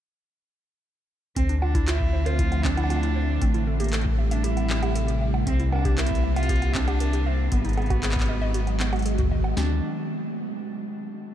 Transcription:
1.36 D2 D3 F3 A3 C4 E5, kick, closed hi-hat
1.49 D4, closed hi-hat
1.62 D4 F4, high bongo
1.75 E4, kick, closed hi-hat
1.88 E4 F4, clap, closed hi-hat
2.00 kick
2.13 C5
2.26 F4 C5, closed hi-hat, high bongo
2.39 E4, kick, closed hi-hat
2.52 closed hi-hat, high bongo
2.64 C4 D4, kick, clap
2.77 E4, closed hi-hat, high bongo
2.84 high bongo
2.90 F4, closed hi-hat, high bongo
2.97 high bongo
3.03 E4, closed hi-hat
3.16 C5
3.41 A1 C3 G3 A3 C4 G4, kick, closed hi-hat
3.54 E4, closed hi-hat
3.67 A4
3.80 A#3 G4, closed hi-hat
3.84 closed hi-hat
3.89 closed hi-hat
3.93 A3 A4, clap, closed hi-hat
4.01 closed hi-hat
4.06 kick
4.18 E5
4.31 D4 E5, closed hi-hat
4.44 E4 G4, closed hi-hat
4.57 closed hi-hat, high bongo
4.70 C4, clap
4.83 G4, closed hi-hat, high bongo
4.95 A4, closed hi-hat
5.08 G4, closed hi-hat
5.21 E5
5.34 high bongo
5.47 C2 A#3 C4, kick, closed hi-hat
5.60 E4, closed hi-hat
5.72 D4 A#4, high bongo
5.76 high bongo
5.79 high bongo
5.82 closed hi-hat, high bongo
5.85 G4, kick, high bongo
5.92 high bongo
5.95 E4 A#4, clap, closed hi-hat, high bongo
6.06 closed hi-hat
6.11 kick
6.15 closed hi-hat
6.24 E5
6.36 F4 E5, closed hi-hat, high bongo
6.43 closed hi-hat
6.49 G4, kick, closed hi-hat
6.56 closed hi-hat
6.62 closed hi-hat, high bongo
6.75 C4 D4, kick, clap
6.88 G4, closed hi-hat, high bongo
7.00 A#4, closed hi-hat
7.13 G4, closed hi-hat
7.26 C4 E5
7.52 G#1 D#3 F#3 G#3 B3 F#4, kick, closed hi-hat
7.65 D#4, closed hi-hat
7.69 closed hi-hat
7.73 closed hi-hat
7.77 G#4, closed hi-hat, high bongo
7.82 closed hi-hat
7.86 closed hi-hat
7.90 F#4, kick, closed hi-hat, high bongo
8.03 G#4, clap, closed hi-hat
8.12 clap
8.16 kick, closed hi-hat
8.19 clap, closed hi-hat
8.22 closed hi-hat
8.26 D#5, closed hi-hat
8.42 D#5
8.54 F#4, closed hi-hat
8.67 closed hi-hat, high bongo
8.80 B3, clap
8.93 F#4, closed hi-hat, high bongo
8.96 closed hi-hat
8.99 closed hi-hat
9.02 closed hi-hat
9.06 G#4, closed hi-hat
9.18 F#4, kick, closed hi-hat
9.23 kick
9.27 kick
9.31 D#5, kick
9.36 kick
9.40 kick
9.44 high bongo
9.57 D2 C4 D4, snare

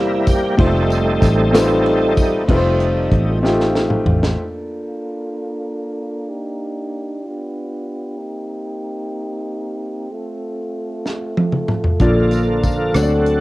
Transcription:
Already playing: E2 C3 G3 A#3 C4 E4 G4 C5
0.27 G4, kick, ride, tambourine
0.57 F1 G3 A3 C4 D#4 F4 C5, kick, ride
0.61 A4
0.90 ride, tambourine
1.22 A1, kick, snare, ride, tambourine
1.53 A3 C4 D#4 F4 B4, snare, ride, tambourine
1.60 C5
1.86 ride
2.17 kick, ride, tambourine
2.48 F1 G3 A3 C4 D#4 F4 A4 B4, kick, crash
2.56 C5
2.80 closed hi-hat
3.11 A1, kick, closed hi-hat
3.43 A3 C4 D#4 F4 G4, snare
3.60 snare
3.75 snare
3.90 mid tom
4.05 A1, floor tom
4.23 snare
4.38 A#3 D4 F4 A4
6.29 D#4 G4
7.25 B3 F4 G4
8.17 A#3 C4 D#4
10.10 A3 F4 A4
11.06 snare
11.37 high tom
11.52 mid tom
11.68 mid tom
11.84 floor tom
11.99 A#1 A#2 D3 F3 A#3 D4 F4 A4 D5, kick, closed hi-hat
12.31 closed hi-hat, tambourine
12.63 kick, closed hi-hat, tambourine
12.94 D2 D3 F#3 C4 D4 F#4 A4 C#5, cross-stick, closed hi-hat, tambourine
13.03 D5
13.26 closed hi-hat

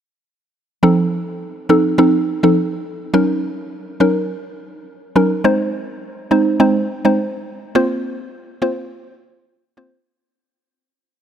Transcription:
0.83 F3 C4 D#4 A4
1.69 F3 C4 D#4 A4
1.98 F3 C4 D#4 A4
2.43 F3 C4 D#4 A4
3.14 F#3 C#4 D#4 A#4
4.00 F#3 C#4 D#4 A#4
5.16 F#3 C#4 D#4 A#4
5.44 G#3 C4 D#4 C5
6.31 G#3 C4 D#4 C5
6.60 G#3 C4 D#4 C5
7.05 G#3 C4 D#4 C5
7.75 A#3 C4 F4 C5
8.62 A#3 C4 F4 C5
9.77 A#3 C4 F4 C5

